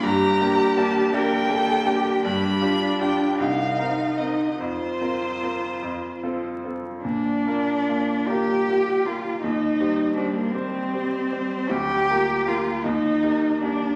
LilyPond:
<<
  \new Staff \with { instrumentName = "Violin" } { \time 6/8 \key bes \major \tempo 4. = 52 bes''4 a''8 g''4. | b''4 g''8 f''4 ees''8 | c''2~ c''8 r8 | d''4. g''4 f''8 |
ees''4 d''16 bes'16 c''4. | g''4 f''8 ees''4 d''8 | }
  \new Staff \with { instrumentName = "Grand piano" } { \time 6/8 \key bes \major g,8 <bes d' g'>8 <bes d' g'>8 <bes d' g'>8 <bes d' g'>8 <bes d' g'>8 | g,8 <d' f' g'>8 <d' f' g'>8 c,8 <c' ees' bes'>8 <c' ees' bes'>8 | f,8 <c' f' bes'>8 <c' f' bes'>8 f,8 <c' f' a'>8 <c' f' a'>8 | bes,8 <bes f' bes'>8 <bes f' bes'>8 <bes f' bes'>8 <bes f' bes'>8 <bes f' bes'>8 |
ees,8 <g g' c''>8 <g g' c''>8 <g g' c''>8 <g g' c''>8 <g g' c''>8 | d,8 <bes f' bes'>8 <bes f' bes'>8 ees,8 <bes g' bes'>8 <bes g' bes'>8 | }
  \new Staff \with { instrumentName = "Cello" } { \time 6/8 \key bes \major g'4. bes'8 a'8 g'8 | d'4. ees'4. | f'2~ f'16 r8. | d'4. g'4 f'8 |
ees'4 d'16 bes16 c'4. | g'4 f'8 ees'4 d'8 | }
>>